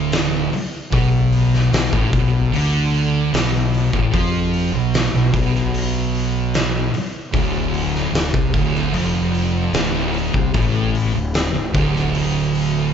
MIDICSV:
0, 0, Header, 1, 6, 480
1, 0, Start_track
1, 0, Tempo, 801068
1, 555, Time_signature, 4, 2, 24, 8
1, 7751, End_track
2, 0, Start_track
2, 0, Title_t, "Distorted electric guitar"
2, 0, Program_c, 0, 30
2, 0, Note_on_c, 0, 38, 105
2, 302, Note_off_c, 0, 38, 0
2, 551, Note_on_c, 0, 47, 98
2, 1026, Note_off_c, 0, 47, 0
2, 1037, Note_on_c, 0, 47, 69
2, 1153, Note_off_c, 0, 47, 0
2, 1156, Note_on_c, 0, 45, 98
2, 1266, Note_off_c, 0, 45, 0
2, 1268, Note_on_c, 0, 47, 97
2, 1504, Note_off_c, 0, 47, 0
2, 1514, Note_on_c, 0, 50, 111
2, 1987, Note_off_c, 0, 50, 0
2, 1996, Note_on_c, 0, 47, 103
2, 2348, Note_off_c, 0, 47, 0
2, 2358, Note_on_c, 0, 45, 93
2, 2470, Note_off_c, 0, 45, 0
2, 2478, Note_on_c, 0, 53, 97
2, 2829, Note_off_c, 0, 53, 0
2, 2836, Note_on_c, 0, 47, 73
2, 3028, Note_off_c, 0, 47, 0
2, 3084, Note_on_c, 0, 47, 67
2, 3192, Note_off_c, 0, 47, 0
2, 3199, Note_on_c, 0, 47, 92
2, 4150, Note_off_c, 0, 47, 0
2, 4398, Note_on_c, 0, 38, 102
2, 4870, Note_off_c, 0, 38, 0
2, 4878, Note_on_c, 0, 38, 69
2, 4991, Note_off_c, 0, 38, 0
2, 4993, Note_on_c, 0, 48, 104
2, 5108, Note_off_c, 0, 48, 0
2, 5112, Note_on_c, 0, 38, 98
2, 5356, Note_off_c, 0, 38, 0
2, 5356, Note_on_c, 0, 41, 106
2, 5829, Note_off_c, 0, 41, 0
2, 5840, Note_on_c, 0, 38, 95
2, 6191, Note_off_c, 0, 38, 0
2, 6199, Note_on_c, 0, 48, 96
2, 6310, Note_off_c, 0, 48, 0
2, 6314, Note_on_c, 0, 45, 101
2, 6668, Note_off_c, 0, 45, 0
2, 6680, Note_on_c, 0, 38, 68
2, 6870, Note_off_c, 0, 38, 0
2, 6912, Note_on_c, 0, 38, 73
2, 7029, Note_off_c, 0, 38, 0
2, 7036, Note_on_c, 0, 38, 99
2, 7751, Note_off_c, 0, 38, 0
2, 7751, End_track
3, 0, Start_track
3, 0, Title_t, "Fingered electric bass"
3, 0, Program_c, 1, 33
3, 0, Note_on_c, 1, 26, 87
3, 290, Note_off_c, 1, 26, 0
3, 553, Note_on_c, 1, 35, 99
3, 1010, Note_off_c, 1, 35, 0
3, 1036, Note_on_c, 1, 35, 83
3, 1147, Note_off_c, 1, 35, 0
3, 1154, Note_on_c, 1, 33, 101
3, 1266, Note_off_c, 1, 33, 0
3, 1275, Note_on_c, 1, 35, 88
3, 1498, Note_off_c, 1, 35, 0
3, 1520, Note_on_c, 1, 38, 93
3, 1974, Note_off_c, 1, 38, 0
3, 1997, Note_on_c, 1, 35, 105
3, 2332, Note_off_c, 1, 35, 0
3, 2357, Note_on_c, 1, 33, 87
3, 2468, Note_off_c, 1, 33, 0
3, 2476, Note_on_c, 1, 41, 91
3, 2812, Note_off_c, 1, 41, 0
3, 2831, Note_on_c, 1, 35, 79
3, 3056, Note_off_c, 1, 35, 0
3, 3074, Note_on_c, 1, 35, 73
3, 3186, Note_off_c, 1, 35, 0
3, 3199, Note_on_c, 1, 35, 84
3, 4134, Note_off_c, 1, 35, 0
3, 4394, Note_on_c, 1, 26, 89
3, 4851, Note_off_c, 1, 26, 0
3, 4864, Note_on_c, 1, 26, 77
3, 4982, Note_off_c, 1, 26, 0
3, 4997, Note_on_c, 1, 36, 92
3, 5108, Note_off_c, 1, 36, 0
3, 5118, Note_on_c, 1, 26, 88
3, 5341, Note_off_c, 1, 26, 0
3, 5344, Note_on_c, 1, 29, 99
3, 5806, Note_off_c, 1, 29, 0
3, 5828, Note_on_c, 1, 26, 98
3, 6168, Note_off_c, 1, 26, 0
3, 6197, Note_on_c, 1, 36, 94
3, 6308, Note_off_c, 1, 36, 0
3, 6318, Note_on_c, 1, 33, 97
3, 6653, Note_off_c, 1, 33, 0
3, 6668, Note_on_c, 1, 26, 70
3, 6895, Note_off_c, 1, 26, 0
3, 6911, Note_on_c, 1, 26, 77
3, 7025, Note_off_c, 1, 26, 0
3, 7039, Note_on_c, 1, 26, 92
3, 7751, Note_off_c, 1, 26, 0
3, 7751, End_track
4, 0, Start_track
4, 0, Title_t, "Muted distorted electric guitar strokes"
4, 309, Note_on_c, 9, 29, 58
4, 369, Note_off_c, 9, 29, 0
4, 4162, Note_on_c, 9, 29, 55
4, 4222, Note_off_c, 9, 29, 0
4, 7751, End_track
5, 0, Start_track
5, 0, Title_t, "Muted fingered electric bass strokes"
5, 317, Note_on_c, 9, 29, 36
5, 377, Note_off_c, 9, 29, 0
5, 4153, Note_on_c, 9, 29, 36
5, 4213, Note_off_c, 9, 29, 0
5, 7751, End_track
6, 0, Start_track
6, 0, Title_t, "Drums"
6, 74, Note_on_c, 9, 46, 76
6, 80, Note_on_c, 9, 38, 107
6, 133, Note_off_c, 9, 46, 0
6, 140, Note_off_c, 9, 38, 0
6, 317, Note_on_c, 9, 46, 52
6, 377, Note_off_c, 9, 46, 0
6, 554, Note_on_c, 9, 36, 109
6, 554, Note_on_c, 9, 46, 74
6, 614, Note_off_c, 9, 36, 0
6, 614, Note_off_c, 9, 46, 0
6, 795, Note_on_c, 9, 46, 52
6, 855, Note_off_c, 9, 46, 0
6, 923, Note_on_c, 9, 38, 31
6, 983, Note_off_c, 9, 38, 0
6, 1038, Note_on_c, 9, 46, 75
6, 1044, Note_on_c, 9, 38, 113
6, 1098, Note_off_c, 9, 46, 0
6, 1104, Note_off_c, 9, 38, 0
6, 1156, Note_on_c, 9, 36, 103
6, 1215, Note_off_c, 9, 36, 0
6, 1277, Note_on_c, 9, 36, 104
6, 1283, Note_on_c, 9, 46, 54
6, 1337, Note_off_c, 9, 36, 0
6, 1343, Note_off_c, 9, 46, 0
6, 1519, Note_on_c, 9, 46, 71
6, 1578, Note_off_c, 9, 46, 0
6, 1760, Note_on_c, 9, 46, 51
6, 1820, Note_off_c, 9, 46, 0
6, 2000, Note_on_c, 9, 46, 76
6, 2007, Note_on_c, 9, 38, 110
6, 2060, Note_off_c, 9, 46, 0
6, 2067, Note_off_c, 9, 38, 0
6, 2242, Note_on_c, 9, 46, 48
6, 2301, Note_off_c, 9, 46, 0
6, 2357, Note_on_c, 9, 36, 97
6, 2417, Note_off_c, 9, 36, 0
6, 2478, Note_on_c, 9, 36, 108
6, 2482, Note_on_c, 9, 46, 76
6, 2538, Note_off_c, 9, 36, 0
6, 2542, Note_off_c, 9, 46, 0
6, 2719, Note_on_c, 9, 46, 59
6, 2779, Note_off_c, 9, 46, 0
6, 2960, Note_on_c, 9, 46, 74
6, 2967, Note_on_c, 9, 38, 112
6, 3020, Note_off_c, 9, 46, 0
6, 3027, Note_off_c, 9, 38, 0
6, 3198, Note_on_c, 9, 36, 106
6, 3202, Note_on_c, 9, 46, 60
6, 3258, Note_off_c, 9, 36, 0
6, 3262, Note_off_c, 9, 46, 0
6, 3326, Note_on_c, 9, 38, 29
6, 3386, Note_off_c, 9, 38, 0
6, 3441, Note_on_c, 9, 46, 81
6, 3501, Note_off_c, 9, 46, 0
6, 3684, Note_on_c, 9, 46, 54
6, 3744, Note_off_c, 9, 46, 0
6, 3920, Note_on_c, 9, 46, 78
6, 3926, Note_on_c, 9, 38, 107
6, 3980, Note_off_c, 9, 46, 0
6, 3986, Note_off_c, 9, 38, 0
6, 4158, Note_on_c, 9, 46, 49
6, 4218, Note_off_c, 9, 46, 0
6, 4396, Note_on_c, 9, 36, 105
6, 4397, Note_on_c, 9, 46, 78
6, 4456, Note_off_c, 9, 36, 0
6, 4457, Note_off_c, 9, 46, 0
6, 4637, Note_on_c, 9, 46, 54
6, 4697, Note_off_c, 9, 46, 0
6, 4766, Note_on_c, 9, 38, 32
6, 4825, Note_off_c, 9, 38, 0
6, 4879, Note_on_c, 9, 46, 70
6, 4886, Note_on_c, 9, 38, 107
6, 4939, Note_off_c, 9, 46, 0
6, 4946, Note_off_c, 9, 38, 0
6, 4997, Note_on_c, 9, 36, 109
6, 5057, Note_off_c, 9, 36, 0
6, 5117, Note_on_c, 9, 36, 107
6, 5118, Note_on_c, 9, 46, 49
6, 5177, Note_off_c, 9, 36, 0
6, 5178, Note_off_c, 9, 46, 0
6, 5245, Note_on_c, 9, 38, 29
6, 5305, Note_off_c, 9, 38, 0
6, 5355, Note_on_c, 9, 46, 76
6, 5415, Note_off_c, 9, 46, 0
6, 5598, Note_on_c, 9, 46, 51
6, 5658, Note_off_c, 9, 46, 0
6, 5834, Note_on_c, 9, 46, 74
6, 5840, Note_on_c, 9, 38, 108
6, 5894, Note_off_c, 9, 46, 0
6, 5900, Note_off_c, 9, 38, 0
6, 6075, Note_on_c, 9, 46, 52
6, 6135, Note_off_c, 9, 46, 0
6, 6197, Note_on_c, 9, 36, 98
6, 6257, Note_off_c, 9, 36, 0
6, 6317, Note_on_c, 9, 46, 79
6, 6318, Note_on_c, 9, 36, 108
6, 6377, Note_off_c, 9, 46, 0
6, 6378, Note_off_c, 9, 36, 0
6, 6560, Note_on_c, 9, 46, 57
6, 6620, Note_off_c, 9, 46, 0
6, 6796, Note_on_c, 9, 46, 78
6, 6802, Note_on_c, 9, 38, 118
6, 6855, Note_off_c, 9, 46, 0
6, 6862, Note_off_c, 9, 38, 0
6, 7038, Note_on_c, 9, 36, 102
6, 7040, Note_on_c, 9, 46, 57
6, 7098, Note_off_c, 9, 36, 0
6, 7100, Note_off_c, 9, 46, 0
6, 7167, Note_on_c, 9, 38, 30
6, 7227, Note_off_c, 9, 38, 0
6, 7280, Note_on_c, 9, 46, 77
6, 7339, Note_off_c, 9, 46, 0
6, 7520, Note_on_c, 9, 46, 59
6, 7580, Note_off_c, 9, 46, 0
6, 7751, End_track
0, 0, End_of_file